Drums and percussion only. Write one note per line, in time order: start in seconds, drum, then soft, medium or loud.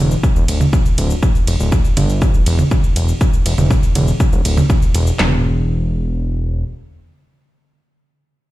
0.11 shaker soft
0.23 kick loud
0.23 shaker medium
0.36 shaker soft
0.48 closed hi-hat loud
0.48 ride medium
0.48 shaker medium
0.61 low conga loud
0.61 shaker soft
0.73 kick loud
0.73 shaker medium
0.85 shaker soft
0.98 closed hi-hat loud
0.98 ride medium
0.98 shaker medium
1.10 shaker soft
1.23 kick loud
1.23 shaker medium
1.35 shaker soft
1.47 closed hi-hat loud
1.47 ride medium
1.47 shaker medium
1.60 shaker soft
1.72 kick loud
1.72 shaker medium
1.85 shaker soft
1.97 closed hi-hat loud
1.97 ride medium
1.97 low conga medium
1.97 shaker medium
2.09 shaker soft
2.22 kick loud
2.22 shaker medium
2.34 shaker soft
2.46 closed hi-hat loud
2.46 ride medium
2.46 shaker medium
2.59 low conga loud
2.59 shaker soft
2.71 kick loud
2.71 shaker medium
2.84 shaker soft
2.96 closed hi-hat loud
2.96 ride medium
2.96 shaker medium
3.08 shaker soft
3.21 kick loud
3.21 shaker medium
3.33 shaker soft
3.46 closed hi-hat loud
3.46 ride medium
3.46 shaker medium
3.58 low conga medium
3.58 shaker soft
3.71 kick loud
3.71 shaker medium
3.83 shaker soft
3.95 closed hi-hat loud
3.95 ride medium
3.95 low conga medium
3.95 shaker medium
4.08 shaker soft
4.20 kick loud
4.20 shaker medium
4.33 shaker soft
4.45 closed hi-hat loud
4.45 ride medium
4.45 shaker medium
4.57 low conga loud
4.57 shaker soft
4.70 kick loud
4.70 shaker medium
4.82 shaker soft
4.95 closed hi-hat loud
4.95 ride medium
4.95 shaker medium
5.07 shaker soft
5.19 snare loud
5.19 clap medium
5.19 floor tom loud